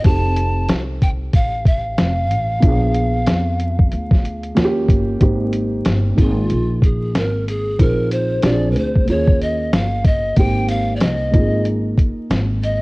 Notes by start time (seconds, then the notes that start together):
0.02 F1 C4 D#4 G4 A5, kick, closed hi-hat
0.07 A4
0.36 closed hi-hat
0.68 C2, snare, closed hi-hat
1.02 G5, kick, closed hi-hat
1.33 A1 F5, kick, closed hi-hat
1.65 F5, kick, closed hi-hat
1.98 F1, snare, closed hi-hat
2.31 A1, closed hi-hat
2.60 A#1 B3 D4 F4, kick, closed hi-hat
2.66 G#4
2.94 closed hi-hat
3.26 F2, snare, closed hi-hat
3.60 closed hi-hat
3.79 kick
3.92 D2, closed hi-hat
4.11 kick, snare
4.25 closed hi-hat
4.44 closed hi-hat
4.55 D#2 A#3 C#4 F4 F#4, snare, closed hi-hat
4.64 G4
4.89 G1, kick, closed hi-hat
5.19 G#1 A#3 C4 D#4 G4, kick, closed hi-hat
5.53 closed hi-hat
5.85 G1, snare, closed hi-hat
6.15 G#1 A#3 D#4 F4, kick, closed hi-hat
6.20 F4 G#4
6.50 A#1, closed hi-hat
6.82 G#4, kick, closed hi-hat
7.15 G#1 A#4, snare, closed hi-hat
7.48 G#4, closed hi-hat
7.78 A#1 C4 D#4 F4 G#4 A#4, kick, closed hi-hat
8.11 C5, closed hi-hat
8.42 A#1 C4 D4 F4 G4 D5, snare, closed hi-hat
8.52 G#4
8.71 B4
8.76 D2 C5, closed hi-hat
8.95 kick
9.05 D#2 A#3 C#4, closed hi-hat
9.09 F4 G#4 C#5
9.27 kick
9.41 D#5, closed hi-hat
9.73 G1 F5, snare, closed hi-hat
10.04 D#5, kick, closed hi-hat
10.36 G#1 A#3 C4 D#4 G4 G5, kick, closed hi-hat
10.69 F5, closed hi-hat
10.96 D5
11.01 C2 D#5, snare, closed hi-hat
11.31 G#1 A#3 D#4 F4, kick, closed hi-hat
11.36 G#4
11.65 closed hi-hat
11.98 kick, closed hi-hat
12.30 G#1, snare, closed hi-hat
12.63 D#5, closed hi-hat